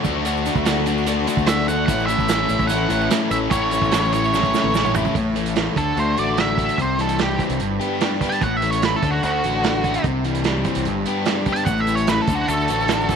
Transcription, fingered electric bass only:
0.05 0.48 D2 medium
0.55 1.25 D2 medium
1.37 1.90 D2 medium
1.88 2.14 A1 medium
2.19 2.45 A1 medium
2.49 2.58 A1 medium
2.60 2.86 A1 medium
2.90 3.07 A1 medium
3.31 3.48 A1 medium
3.51 3.77 A1 loud
3.82 4.52 A1 medium
4.64 5.07 A1 medium
5.15 5.67 A1 loud
5.76 5.94 D2 medium
5.97 6.14 D2 loud
6.18 6.70 A1 medium
6.78 7.39 C2 medium
7.50 7.59 C2 loud
7.61 7.78 G1 loud
8.42 8.94 A1 medium
9.02 9.20 D2 medium
9.23 9.41 D2 loud
9.44 9.96 A1 medium
10.04 10.65 C2 medium
10.77 10.85 C2 medium
10.86 11.04 G1 loud
11.66 12.19 A1 loud
12.27 12.46 D2 medium
12.49 12.66 D2 medium
12.70 13.16 A1 medium

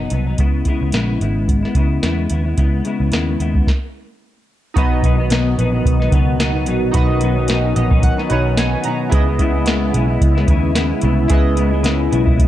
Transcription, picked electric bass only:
0.12 0.33 C2 medium
0.39 0.61 C#2 loud
0.82 0.91 C#2 medium
0.94 1.15 A#1 medium
1.21 1.65 G#1 medium
1.75 1.97 C#2 medium
2.03 2.25 E2 medium
2.31 2.52 D#2 medium
2.58 2.80 C#2 loud
3.00 3.10 C#2 medium
3.13 3.34 D#2 medium
3.40 3.62 D#2 medium
4.77 5.54 B1 loud
5.58 5.80 A#1 medium
5.86 6.07 B1 loud
6.12 6.68 C#2 medium
6.68 6.89 A#1 loud
6.95 7.72 B1 loud
7.76 8.10 A#1 medium
8.31 8.75 B1 loud
9.12 9.90 C#2 loud
9.94 10.16 B1 medium
10.21 10.43 C#2 medium
10.48 10.92 D#2 medium
11.03 11.25 C2 medium
11.30 12.08 C#2 loud
12.12 12.46 B1 medium

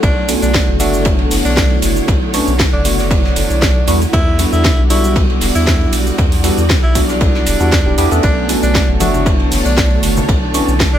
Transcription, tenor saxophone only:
0.03 0.33 D4 loud
0.42 0.71 D4 loud
0.80 1.10 D4 medium
1.45 1.83 D4 medium
2.73 2.92 D4 medium
2.99 4.04 D4 medium
4.13 4.43 E4 loud
4.53 4.82 E4 loud
4.90 5.20 E4 medium
5.55 5.93 E4 medium
6.83 7.03 E4 medium
7.09 8.14 D4 medium
8.23 8.53 D4 loud
8.63 8.92 D4 loud
9.00 9.30 D4 medium
9.65 10.04 D4 medium
10.94 10.99 D4 medium

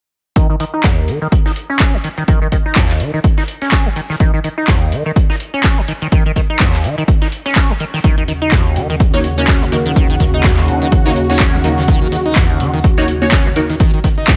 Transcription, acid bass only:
0.36 0.47 D#3 medium
0.50 0.55 D#3 medium
0.60 0.65 D#3 medium
0.74 0.85 D#4 medium
0.84 1.09 D#2 medium
1.08 1.19 D#3 medium
1.22 1.27 D#3 medium
1.46 1.51 D#4 medium
1.70 1.95 C#4 medium
1.94 1.97 D#3 medium
2.04 2.09 D#3 medium
2.18 2.23 D#3 medium
2.28 2.39 D#3 medium
2.42 2.47 D#3 medium
2.52 2.57 D#3 medium
2.66 2.78 D#4 medium
2.76 3.02 D#2 medium
3.00 3.11 D#3 medium
3.14 3.19 D#3 medium
3.38 3.43 D#4 medium
3.62 3.87 C#4 medium
3.86 3.89 D#3 medium
3.96 4.01 D#3 medium
4.10 4.15 D#3 medium
4.20 4.31 D#3 medium
4.34 4.39 D#3 medium
4.44 4.49 D#3 medium
4.58 4.70 D#4 medium
4.68 4.94 D#2 medium
4.92 5.03 D#3 medium
5.06 5.11 D#3 medium
5.30 5.35 D#4 medium
5.54 5.79 C#4 medium
5.78 5.81 D#3 medium
5.88 5.93 D#3 medium
6.02 6.07 D#3 medium
6.12 6.23 D#3 medium
6.26 6.31 D#3 medium
6.36 6.41 D#3 medium
6.50 6.62 D#4 medium
6.60 6.86 D#2 medium
6.84 6.95 D#3 medium
6.98 7.04 D#3 medium
7.22 7.27 D#4 medium
7.46 7.71 C#4 medium
7.70 7.73 D#3 medium
7.80 7.85 D#3 medium
7.94 7.99 D#3 medium
8.04 8.15 D#3 medium
8.18 8.23 D#3 medium
8.28 8.33 D#3 medium
8.42 8.54 D#4 medium
8.52 8.78 D#2 medium
8.76 8.87 D#3 medium
8.90 8.95 D#3 medium
9.14 9.19 D#4 medium
9.38 9.63 C#4 medium
9.62 9.65 D#3 medium
9.72 9.77 D#3 medium
9.86 9.91 D#3 medium
9.96 10.07 D#3 medium
10.10 10.15 D#3 medium
10.20 10.25 D#3 medium
10.34 10.46 D#4 medium
10.44 10.70 D#2 medium
10.68 10.79 D#3 medium
10.82 10.87 D#3 medium
11.06 11.11 D#4 medium
11.30 11.55 C#4 medium
11.54 11.57 D#3 medium
11.64 11.69 D#3 medium
11.78 11.83 D#3 medium
11.88 11.99 D#3 medium
12.02 12.07 D#3 medium
12.12 12.17 D#3 medium
12.26 12.37 D#4 medium
12.36 12.62 D#2 medium
12.60 12.71 D#3 medium
12.74 12.79 D#3 medium
12.98 13.03 D#4 medium
13.22 13.47 C#4 medium
13.46 13.49 D#3 medium
13.56 13.61 D#3 medium
13.70 13.75 D#3 medium
13.80 13.91 D#3 medium
13.94 13.99 D#3 medium
14.04 14.09 D#3 medium
14.18 14.30 D#4 medium
14.28 14.37 D#2 medium

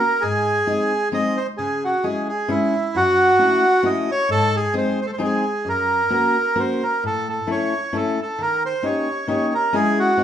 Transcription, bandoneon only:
0.00 0.23 A#4 medium
0.21 1.09 G#4 loud
1.14 1.39 D#5 medium
1.37 1.47 C5 medium
1.57 1.84 G#4 medium
1.85 2.06 F#4 medium
2.04 2.27 G#4 medium
2.29 2.51 G#4 medium
2.50 2.97 E4 medium
2.96 3.89 F#4 loud
3.86 4.11 D#5 medium
4.11 4.30 C#5 loud
4.31 4.56 A4 loud
4.56 4.75 G#4 medium
4.78 5.00 C5 medium
5.02 5.06 C5 medium
5.07 5.11 A4 medium
5.13 5.22 C5 medium
5.24 5.69 G#4 medium
5.69 6.62 A#4 medium
6.60 6.84 C5 medium
6.83 7.04 A#4 medium
7.06 7.28 A4 medium
7.30 7.50 A4 medium
7.51 7.97 C#5 medium
7.97 8.20 A4 medium
8.22 8.42 A4 medium
8.42 8.63 A#4 medium
8.66 8.86 C5 medium
8.86 9.27 C#5 medium
9.29 9.54 C#5 medium
9.54 9.75 A#4 medium
9.75 9.99 G#4 medium
9.99 10.24 F#4 medium

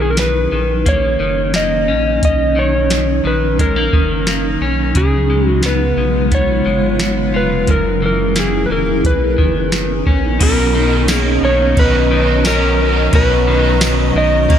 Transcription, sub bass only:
0.00 0.48 B1 medium
0.52 1.17 A#1 medium
1.20 1.90 F#1 medium
1.89 2.21 A#1 medium
2.23 3.21 B1 loud
3.24 3.89 A#1 medium
3.93 4.58 F#1 medium
4.61 4.93 B1 medium
4.95 5.94 C#2 medium
5.97 6.62 B1 medium
6.66 7.36 G#1 medium
7.34 7.66 F1 medium
7.68 8.66 F#1 loud
8.70 9.03 E1 medium
9.04 9.37 B1 loud
9.38 10.03 F#1 medium
10.06 10.39 A#1 medium
10.41 11.39 B1 loud
11.42 11.75 B1 loud
11.77 13.09 B1 loud
13.13 14.11 B1 loud
14.15 14.48 B1 loud
14.50 14.59 B1 loud

